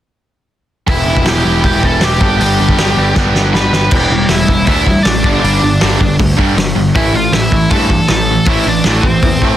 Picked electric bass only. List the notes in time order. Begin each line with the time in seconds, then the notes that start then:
0.88 E1
1.06 E1
1.26 E1
1.45 E1
1.64 E1
1.83 E1
2.02 E1
2.21 G1
2.40 G1
2.60 G1
2.78 G1
2.97 G1
3.16 G1
3.34 G1
3.54 G1
3.73 G1
3.91 E1
4.10 E1
4.29 E1
4.48 E1
4.67 D2
5.05 A1
5.24 G1
5.44 G1
5.62 G1
5.83 G1
6.00 G1
6.20 D2
6.38 G2
6.57 G1
6.76 G1
6.95 A1
7.13 A1
7.32 A1
7.52 A1
7.71 G2
8.10 A1
8.47 A1
8.66 A1
8.86 A1
9.03 A1
9.23 E2
9.42 A2